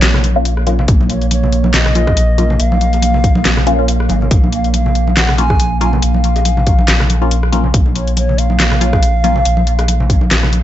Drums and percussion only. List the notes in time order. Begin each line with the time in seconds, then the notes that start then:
0.02 snare, clap, closed hi-hat
0.14 cross-stick, low conga
0.24 closed hi-hat, high conga
0.45 closed hi-hat
0.57 cross-stick
0.67 closed hi-hat, high conga
0.79 low conga
0.88 kick, closed hi-hat
1.01 high conga
1.10 closed hi-hat
1.22 closed hi-hat
1.31 closed hi-hat, high conga
1.43 low conga
1.52 closed hi-hat
1.64 high conga
1.74 snare, clap, closed hi-hat
1.86 cross-stick, low conga
1.95 closed hi-hat, high conga
2.07 kick, cross-stick, high bongo
2.17 closed hi-hat
2.38 closed hi-hat, high conga
2.50 low conga
2.60 closed hi-hat
2.72 high conga
2.81 closed hi-hat
2.93 closed hi-hat, high bongo
3.02 closed hi-hat, high conga
3.14 low conga
3.24 kick, closed hi-hat
3.35 high conga
3.45 snare, clap, closed hi-hat
3.57 cross-stick, low conga
3.67 closed hi-hat, high conga
3.88 closed hi-hat
4.00 cross-stick
4.09 closed hi-hat, high conga
4.21 high bongo, low conga
4.31 kick, closed hi-hat
4.44 high conga
4.52 closed hi-hat
4.64 closed hi-hat
4.74 closed hi-hat, high conga
4.86 low conga
4.95 closed hi-hat
5.07 high conga
5.17 snare, clap, closed hi-hat
5.29 cross-stick, low conga
5.38 closed hi-hat, high conga
5.50 kick, cross-stick, high bongo
5.60 closed hi-hat
5.81 closed hi-hat, high conga
5.93 low conga
6.02 closed hi-hat
6.14 high conga
6.24 closed hi-hat
6.36 closed hi-hat, high bongo
6.45 closed hi-hat, high conga
6.57 low conga
6.67 kick, closed hi-hat
6.79 high conga
6.88 snare, clap, closed hi-hat
7.00 cross-stick, low conga
7.10 closed hi-hat, high conga
7.31 closed hi-hat
7.43 cross-stick
7.53 closed hi-hat, high conga
7.64 low conga
7.74 kick, closed hi-hat
7.86 high conga
7.95 closed hi-hat
8.07 closed hi-hat
8.17 closed hi-hat, high conga
8.29 low conga
8.38 closed hi-hat
8.50 high conga
8.60 snare, clap, closed hi-hat
8.72 cross-stick, low conga
8.81 closed hi-hat, high conga
8.93 kick, cross-stick, high bongo
9.03 closed hi-hat
9.24 closed hi-hat, high conga
9.36 low conga
9.45 closed hi-hat
9.57 high conga
9.67 closed hi-hat
9.79 cross-stick, closed hi-hat, high bongo
9.88 closed hi-hat, high conga
10.00 low conga
10.10 kick, closed hi-hat
10.21 high conga
10.31 snare, clap, closed hi-hat
10.43 cross-stick, low conga
10.52 closed hi-hat, high conga